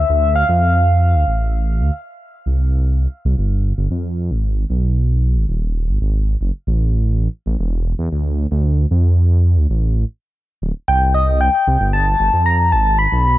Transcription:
Already playing: soft synth lead E5
0.09 detuned saw bass D2
0.36 soft synth lead F5
0.49 detuned saw bass F2
1.15 detuned saw bass D2
1.28 detuned saw bass A1
1.80 detuned saw bass D2
2.46 detuned saw bass C2
3.25 detuned saw bass C2
3.38 detuned saw bass G1
3.78 detuned saw bass G1
3.91 detuned saw bass F2
4.30 detuned saw bass G#1
4.70 detuned saw bass B1
5.36 detuned saw bass G#1
5.49 detuned saw bass D#1
5.88 detuned saw bass G#1
6.01 detuned saw bass G#1
6.41 detuned saw bass F#1
6.67 detuned saw bass A1
7.46 detuned saw bass A1
7.59 detuned saw bass E1
7.99 detuned saw bass E2
8.12 detuned saw bass D2
8.51 detuned saw bass D2
8.91 detuned saw bass F2
9.57 detuned saw bass D2
9.70 detuned saw bass A1
10.62 detuned saw bass D1
10.88 detuned saw bass C2, soft synth lead G5
11.14 soft synth lead D#5
11.41 soft synth lead G5
11.67 detuned saw bass C2
11.80 detuned saw bass G1
11.93 soft synth lead A5
12.20 detuned saw bass G1
12.33 detuned saw bass F2
12.46 soft synth lead A#5
12.72 detuned saw bass G#1, soft synth lead A5
12.99 soft synth lead B5
13.12 detuned saw bass B1

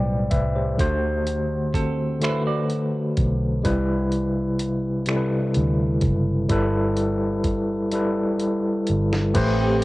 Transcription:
Already playing: fingered electric bass B1, tine electric piano A2 G3 B4 D5 G5
0.31 fingered electric bass C2, tine electric piano B4 E5, kick, closed hi-hat
0.56 tine electric piano G4 C5
0.78 fingered electric bass D2, tine electric piano D3 A3 F#4 C5, kick, closed hi-hat
1.27 closed hi-hat
1.74 clean electric guitar C4 A4, kick, closed hi-hat
2.20 tine electric piano D3 A3 F#4 A4, clean electric guitar E4 C5, closed hi-hat
2.24 finger snap
2.29 tine electric piano B4
2.47 clean electric guitar F#4 D5
2.70 closed hi-hat
3.17 fingered electric bass B1, kick, closed hi-hat
3.63 fingered electric bass C2, tine electric piano C3 G3 E4 B4, kick, closed hi-hat
4.12 closed hi-hat
4.59 closed hi-hat
5.06 tine electric piano C3 G3 E4 A4, finger snap, closed hi-hat
5.16 tine electric piano B4
5.54 fingered electric bass D2, closed hi-hat
6.01 fingered electric bass F#1, kick, closed hi-hat
6.49 fingered electric bass G1, tine electric piano G3 E4 A4 B4, kick, closed hi-hat
6.97 closed hi-hat
7.44 kick, closed hi-hat
7.91 tine electric piano G3 E4 A4 B4, closed hi-hat
8.39 closed hi-hat
8.87 fingered electric bass G1, closed hi-hat
9.13 snare
9.34 fingered electric bass A1, tine electric piano A3 G4 B4 C5, analog synth pad A3 C4 G4, kick, closed hi-hat, crash

